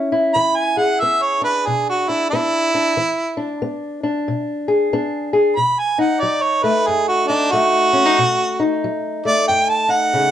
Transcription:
Already playing: E3 C#4 E4
0.12 E4
0.34 E3 B5
0.56 G#5
0.77 G#4 F#5
1.00 B3 E5
1.22 C#5
1.42 D4 B4
1.67 B2 G#4
1.89 F#4
2.09 D4 E4
2.30 B3 D4 E4
2.75 D4
2.97 E3
3.37 D4
3.62 B3
4.03 D4
4.28 B2
4.68 G#4
4.93 B3 D4
5.33 G#4
5.56 B2 B5
5.79 G#5
5.98 D#4 F#5
6.21 F#3 D5
6.42 C#5
6.63 A3 B4
6.87 F#2 G#4
7.08 F#4
7.28 D4 D#4
7.52 F#3 A3 F#4
7.93 C#4
8.06 D#4
8.18 B2
8.60 D#4
8.84 F#3
9.25 A3 D5
9.48 F#2 G5
9.69 A5
9.88 D#4 F#5
10.14 C#3

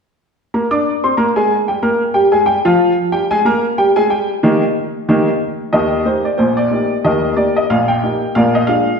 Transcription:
0.54 A#3 A#4 A#5
0.71 D4 D5 D6
1.04 C4 C5 C6
1.17 A#3 A#4 A#5
1.36 G#3 G#4 G#5
1.68 G3 G4 G5
1.83 A#3 A#4 A#5
2.14 G3 G4 G5
2.32 G#3 G#4 G#5
2.46 G3 G4 G5
2.65 F3 F4 F5
3.12 G3 G4 G5
3.31 G#3 G#4 G#5
3.45 A#3 A#4 A#5
3.78 G3 G4 G5
3.96 G#3 G#4 G#5
4.10 G3 G4 G5
4.43 D#3 A#3 D#4 G4
5.09 D#3 A#3 D#4 G4
5.73 D#2 D#3 G4 A#4 D#5
6.05 A#3 D#4 G4 C5
6.25 D5
6.38 A#1 A#2 C5
6.57 D5
6.71 A#3 D#4 G4
7.04 D#2 D#3 G4 A#4 D#5
7.37 A#3 D#4 G4 D5
7.57 D#5
7.70 A#1 A#2 F5
7.88 G5
8.03 A#3 D#4 G4
8.35 A#1 A#2 A#4 D5 F5
8.55 D#5
8.67 G#3 D4 F4 F5

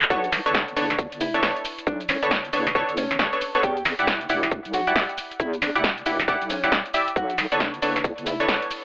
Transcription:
0.02 clap
0.10 B1 B3 D4 F#4 A4 C#5, kick, shaker
0.24 closed hi-hat, shaker
0.32 snare, open hi-hat, shaker
0.46 F#1 B3 D4 A4 C#5, closed hi-hat, shaker
0.54 D4, kick, snare, shaker
0.68 closed hi-hat, shaker
0.76 F#1 B3 D4 A4 C#5, open hi-hat, shaker
0.90 snare, closed hi-hat, shaker
0.99 kick, shaker
1.12 F#1, closed hi-hat, shaker
1.21 E4, open hi-hat, shaker
1.34 B3 D4 A4 C#5, closed hi-hat, shaker
1.43 F#1 B3 D4 A4 C#5, kick, snare, open hi-hat, shaker
1.56 closed hi-hat, shaker
1.65 open hi-hat, shaker
1.78 closed hi-hat, shaker
1.87 B1 D4, kick, shaker
2.01 closed hi-hat, shaker
2.09 C#4, snare, open hi-hat, shaker
2.23 F#1 B3 D4 A4 C#5, closed hi-hat, shaker
2.31 kick, snare, shaker
2.45 closed hi-hat, shaker
2.53 F#1 B3 D4 A4 C#5, open hi-hat, shaker
2.67 snare, closed hi-hat, shaker
2.75 B3 D4 A4 C#5, kick, shaker
2.89 F#1, closed hi-hat, shaker
2.97 C#4, open hi-hat, shaker
3.11 snare, closed hi-hat, shaker
3.19 F#1 B3 D4 A4 C#5, kick, snare, shaker
3.33 B3 D4 A4 C#5, closed hi-hat, shaker
3.41 open hi-hat, shaker
3.55 B3 D4 A4 C#5, closed hi-hat, shaker
3.63 E2 G4, kick, shaker
3.77 closed hi-hat, shaker
3.85 snare, open hi-hat, shaker
3.99 E1 E4 G4 D5 F#5, closed hi-hat, shaker
4.07 E4, kick, snare, shaker
4.21 closed hi-hat, shaker
4.29 E1 E4 G4 D5 F#5, open hi-hat, shaker
4.43 snare, closed hi-hat, shaker
4.51 kick, shaker
4.65 B1, closed hi-hat, shaker
4.73 F#4, open hi-hat, shaker
4.87 E4 G4 D5 F#5, closed hi-hat, shaker
4.96 E1 E4 G4 D5 F#5, kick, snare, open hi-hat, shaker
5.09 closed hi-hat, shaker
5.18 open hi-hat, shaker
5.31 closed hi-hat, shaker
5.40 E2 E4, kick, shaker
5.53 closed hi-hat, shaker
5.62 D4, snare, open hi-hat, shaker
5.75 E1 E4 G4 D5 F#5, closed hi-hat, shaker
5.84 kick, snare, shaker
5.98 closed hi-hat, shaker
6.06 E1 E4 G4 D5 F#5, open hi-hat, shaker
6.20 snare, closed hi-hat, shaker
6.28 E4 G4 D5 F#5, kick, shaker
6.42 B1, closed hi-hat, shaker
6.50 C#4, open hi-hat, shaker
6.64 E4 G4 D5 F#5, snare, closed hi-hat, shaker
6.72 E1, kick, snare, shaker
6.86 closed hi-hat, shaker
6.94 E4 G4 D5 E5, open hi-hat, shaker
7.08 closed hi-hat, shaker
7.16 B1 F#4, kick, shaker
7.30 closed hi-hat, shaker
7.38 snare, open hi-hat, shaker
7.52 F#1 B3 D4 A4 C#5, closed hi-hat, shaker
7.60 D4, kick, snare, shaker
7.74 closed hi-hat, shaker
7.82 F#1 B3 D4 A4 C#5, open hi-hat, shaker
7.96 snare, closed hi-hat, shaker
8.04 kick, shaker
8.18 F#1, closed hi-hat, shaker
8.26 E4, open hi-hat, shaker
8.40 B3 D4 A4 C#5, closed hi-hat, shaker
8.48 F#1 B3 D4 A4 C#5, kick, snare, open hi-hat, shaker
8.62 closed hi-hat, shaker
8.71 open hi-hat, shaker

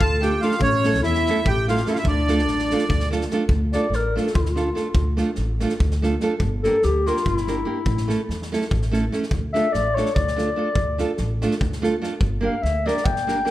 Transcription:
0.01 D2 A4 A5, kick
0.21 A3 D4 F4 G4 A4 G5, snare
0.41 A3 D4 F4 A4 F5, snare
0.51 snare
0.60 A1 C#4 C#5, kick
0.84 A3 C#4 E4 A4, snare
0.94 snare
1.02 E2 E4 E5, snare
1.15 snare
1.26 A3 C#4 E4, snare
1.30 A4
1.45 A1 G4 G5, kick
1.68 A3 C#4 E4 F4 A4 F5, snare
1.77 snare
1.86 A3 C#4 E4 A4 E5, snare
1.93 F4 F5, snare
1.98 E4 E5
2.04 D2 D4 D5, kick
2.28 A3 D4 F4 A4, snare
2.39 snare
2.47 A1, snare
2.59 snare
2.70 A3 D4 F4 A4, snare
2.78 snare
2.89 D2, kick
3.00 snare
3.11 A3 D4 F4 A4, snare
3.21 snare
3.31 A3 D4 F4 A4, snare
3.49 D2, kick
3.73 A3 D4 F4 A4 D5, snare
3.90 A1, snare
3.96 A#4
4.16 A3 D4 F4 A4, snare
4.27 snare
4.34 D2 F4, kick
4.41 E4
4.45 snare
4.50 F4
4.55 A3 D4 F4 A4, snare
4.75 A3 D4 F4 A4, snare
4.95 D2, kick
5.17 A3 D4 F4 A4, snare
5.35 A1, snare
5.60 A3 D4 F4 A4, snare
5.69 snare
5.80 D2, kick
5.91 snare
6.02 A3 D4 F4 A4, snare
6.20 A3 D4 F4 A4, snare
6.40 G1, kick
6.63 A#3 D4 G4 A4 A#4, snare
6.83 D2 G4, snare
7.06 A#3 D4 F4 G4 A#4, snare
7.17 snare
7.26 G1 E4, kick
7.37 snare
7.47 A#3 D4 G4 A#4, snare
7.65 A#3 D4 G4 A#4
7.86 A1, kick
7.97 snare
8.08 A3 C#4 E4 A4, snare
8.29 E2, snare
8.42 snare
8.52 A3 C#4 E4 A4, snare
8.62 snare
8.71 A1, kick
8.82 snare
8.91 A3 C#4 E4 A4, snare
9.12 A3 C#4 E4 A4, snare
9.23 snare
9.31 D2, kick
9.53 A3 D4 F4 A4 E5, snare
9.72 A1 D5, snare
9.95 A3 D4 F4 A4 C#5, snare
10.06 snare
10.15 D2 D5, kick
10.28 snare
10.36 A3 D4 F4 A4, snare
10.56 A3 D4 F4 A4
10.75 D2, kick
10.98 A3 D4 F4 A4, snare
11.17 A1, snare
11.42 A3 D4 F4 A4, snare
11.51 snare
11.61 D2, kick
11.72 snare
11.82 A3 D4 F4 A4, snare
12.02 A3 D4 F4 A4, snare
12.21 G1, kick
12.41 A#3 D4 G4 A#4
12.45 F5
12.62 D2 E5, snare
12.86 A#3 D4 G4 A#4 D5, snare
12.97 snare
13.06 G1 G5, kick
13.16 snare
13.27 A#3 D4 G4 A#4, snare
13.45 A#3 D4 G4 A#4, snare

